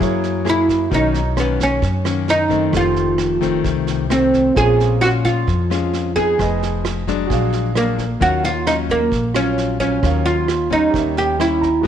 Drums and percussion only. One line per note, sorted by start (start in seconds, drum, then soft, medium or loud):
0.01 kick medium
0.01 snare soft
0.24 snare soft
0.46 cross-stick medium
0.46 snare soft
0.69 kick soft
0.69 snare soft
0.91 kick medium
0.91 snare soft
1.14 snare soft
1.37 cross-stick medium
1.37 snare soft
1.60 kick soft
1.60 snare soft
1.82 kick medium
1.82 snare soft
2.05 cross-stick medium
2.05 snare soft
2.28 snare soft
2.50 kick soft
2.50 snare soft
2.73 kick medium
2.73 cross-stick medium
2.73 snare soft
2.96 snare soft
3.18 cross-stick medium
3.18 snare soft
3.42 kick soft
3.42 snare soft
3.64 kick medium
3.64 snare soft
3.87 snare soft
4.10 cross-stick medium
4.10 snare soft
4.34 kick soft
4.34 snare soft
4.56 kick medium
4.56 snare soft
4.80 snare soft
5.02 cross-stick medium
5.02 snare soft
5.25 kick soft
5.25 snare soft
5.48 kick medium
5.48 snare soft
5.71 cross-stick medium
5.71 snare soft
5.93 snare soft
6.16 kick soft
6.16 snare soft
6.39 kick medium
6.39 cross-stick medium
6.39 snare soft
6.62 snare soft
6.85 cross-stick medium
6.85 snare soft
7.07 kick soft
7.07 snare soft
7.30 kick medium
7.30 snare soft
7.53 snare soft
7.75 cross-stick medium
7.75 snare soft
7.98 kick soft
7.98 snare soft
8.21 kick medium
8.21 snare soft
8.44 snare soft
8.67 cross-stick medium
8.67 snare soft
8.89 kick soft
8.89 snare soft
9.12 kick medium
9.12 snare soft
9.35 cross-stick medium
9.35 snare soft
9.58 snare soft
9.80 kick soft
9.80 snare soft
10.03 kick medium
10.03 cross-stick medium
10.03 snare soft
10.26 snare soft
10.48 cross-stick medium
10.48 snare soft
10.71 kick soft
10.71 snare soft
10.94 kick medium
10.94 snare soft
11.17 snare soft
11.40 cross-stick medium
11.40 snare soft
11.62 kick soft
11.62 snare soft